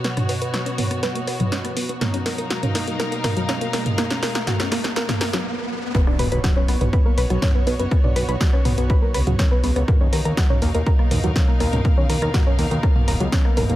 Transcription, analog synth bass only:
6.07 6.15 B1 medium
6.19 6.27 B1 medium
6.32 6.40 B1 medium
6.69 6.77 B1 loud
6.81 6.89 B1 medium
7.18 7.26 B1 medium
7.30 7.38 B1 medium
7.67 7.75 B1 medium
7.79 7.87 F#1 medium
8.04 8.12 B1 medium
8.16 8.24 B1 medium
8.29 8.36 B1 medium
8.65 8.73 B1 loud
8.78 9.16 B1 medium
9.14 9.22 C#2 loud
9.27 9.35 C#2 medium
9.64 9.72 C#2 medium
9.76 9.84 C#2 medium
10.01 10.08 D#2 medium
10.13 10.21 D#2 medium
10.25 10.33 D#2 medium
10.62 10.70 D#2 medium
10.75 10.82 D#2 medium
11.11 11.19 D#2 medium
11.24 11.31 D#2 medium
11.60 11.68 D#2 medium
11.73 11.81 C#2 medium
11.97 12.05 D#2 medium
12.10 12.18 D#2 medium
12.22 12.30 D#2 medium
12.59 12.67 D#2 medium
12.71 12.79 D#2 medium
13.08 13.16 D#1 loud
13.20 13.28 C#2 medium
13.57 13.65 D#1 medium
13.70 13.76 D#1 medium

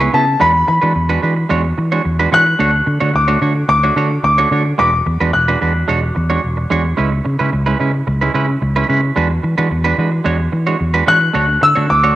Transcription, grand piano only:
0.00 0.14 C#6 loud
0.14 0.42 A5 loud
0.41 0.67 B5 loud
0.68 1.46 B5 medium
2.34 3.18 F#6 loud
3.16 3.67 D6 medium
3.69 4.23 D6 loud
4.24 4.77 D6 medium
4.79 5.35 D6 loud
5.33 6.11 F#6 medium
11.08 11.64 F#6 loud
11.63 11.88 E6 loud
11.90 12.16 D6 loud

